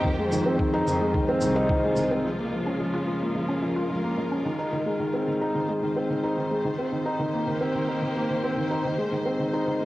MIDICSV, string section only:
0, 0, Header, 1, 2, 480
1, 0, Start_track
1, 0, Key_signature, -4, "minor"
1, 0, Tempo, 550459
1, 37, Time_signature, 4, 2, 24, 8
1, 8589, End_track
2, 0, Start_track
2, 0, Title_t, "String section"
2, 0, Program_c, 0, 48
2, 0, Note_on_c, 0, 51, 70
2, 0, Note_on_c, 0, 58, 75
2, 0, Note_on_c, 0, 67, 86
2, 0, Note_on_c, 0, 72, 77
2, 139, Note_on_c, 0, 56, 79
2, 709, Note_on_c, 0, 65, 79
2, 801, Note_off_c, 0, 67, 0
2, 804, Note_off_c, 0, 58, 0
2, 1950, Note_on_c, 0, 49, 69
2, 1954, Note_off_c, 0, 51, 0
2, 2546, Note_on_c, 0, 70, 60
2, 2614, Note_off_c, 0, 72, 0
2, 3874, Note_off_c, 0, 49, 0
2, 3875, Note_on_c, 0, 51, 60
2, 4645, Note_off_c, 0, 70, 0
2, 4740, Note_on_c, 0, 72, 71
2, 5796, Note_off_c, 0, 56, 0
2, 6198, Note_on_c, 0, 67, 61
2, 6205, Note_on_c, 0, 58, 77
2, 6566, Note_off_c, 0, 65, 0
2, 7919, Note_on_c, 0, 65, 56
2, 8113, Note_on_c, 0, 56, 60
2, 8482, Note_off_c, 0, 67, 0
2, 8483, Note_off_c, 0, 58, 0
2, 8589, Note_off_c, 0, 51, 0
2, 8589, Note_off_c, 0, 56, 0
2, 8589, Note_off_c, 0, 65, 0
2, 8589, Note_off_c, 0, 72, 0
2, 8589, End_track
0, 0, End_of_file